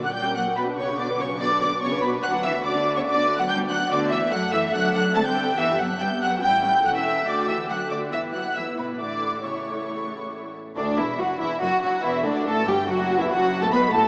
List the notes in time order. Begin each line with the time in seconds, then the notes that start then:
Already playing: A#1
0.04 F#3 C#4 A#4 F#5 F#6
0.14 G3 A#3 F#4 G5 G6
0.26 C#4 A#4
0.35 F#3 A#3 F#4 F#5 F#6
0.47 C#4 A#4
0.56 B1 B2 B3 F#4 B4 B5
0.68 D4 B4
0.76 C#3 B3 F#4 C#5 C#6
0.89 D4 B4
0.97 D3 B3 F#4 D5 D6
1.09 D4 B4
1.20 C#3 B3 F#4 C#5 C#6
1.31 D4 B4
1.39 D3 B3 F#4 D5 D6
1.51 D4 B4
1.60 D3 B3 F#4 D5 D6
1.72 D4 B4
1.81 C#3 B3 F#4 C#5 C#6
1.93 D4 B4
2.02 B2 B3 F#4 B4 B5
2.14 D4 B4
2.23 D2 F#3 D4 F#4 F#5 F#6
2.34 B3 D4
2.43 E3 D4 F#4 E5 E6
2.55 B3 D4
2.64 D3 D4 F#4 D5 D6
2.76 B3 D4
2.86 D4 F#4
2.96 C#3 B3 D4 C#5 C#6
3.06 D3 D4 F#4 D5 D6
3.17 B3 D4
3.28 D4 F#4
3.38 F#3 B3 D4 F#5 F#6
3.49 G3 D4 F#4 G5 G6
3.60 B3 D4
3.70 F#3 D4 F#4 F#5 F#6
3.80 B3 D4
3.90 D2 D3 B3 F#4 D5 D6
4.11 E3 E5 E6
4.31 F#2 F#3 A3 A4 F#5 F#6
4.52 E3 E5 E6
4.73 D2 F#3 D4 A4 F#5 F#6
4.94 F#3 F#5 F#6
5.15 D3 A3 C4 A5 A6
5.26 G3 G5 G6
5.58 G1 E3 B3 G4 E5 E6
5.79 F#3 F#5 F#6
6.00 G2 G3 B3 G4 G5 G6
6.22 F#3 F#5 F#6
6.43 A1 G3 C#4 E4 G5 G6
6.64 G3 G5 G6
6.84 E1 F#3 C#4 A4 F#5 F#6
6.95 E3 E5 E6
7.27 D2 D3 A3 F#4 D5 D6
7.48 E3 E5 E6
7.69 F#3 A3 F#4 F#5 F#6
7.90 D3 D5 D6
8.12 G1 E3 B3 E4 E5 E6
8.34 F#3 F#5 F#6
8.56 E3 B3 E4 E5 E6
8.78 B2 B4 B5
9.00 A1 D3 A3 E4 D5 D6
9.44 C#3 A3 E4 C#5 C#6
10.77 D2 D3 D4 D5
10.98 E1 E2 E3 E4 E5
11.19 F#1 F#2 F#3 F#4 F#5
11.40 E1 E2 E3 E4 E5
11.61 F#1 F#2 F#3 F#4 F#5
11.82 F#1 F#2 F#3 F#4 F#5
12.04 E1 E2 E3 E4 E5
12.25 D2 D3 D4 D5
12.46 A1 A2 A3 A4 A5
12.67 G1 G2 G3 G4 G5
12.88 F#1 F#2 F#3 F#4 F#5
13.20 E2 E3 E4 E5
13.30 F#1 F#2 F#3 F#4 F#5
13.61 A2 A3 A4 A5
13.71 B1 B2 B3 B4 B5
13.91 A1 A2 A3 A4 A5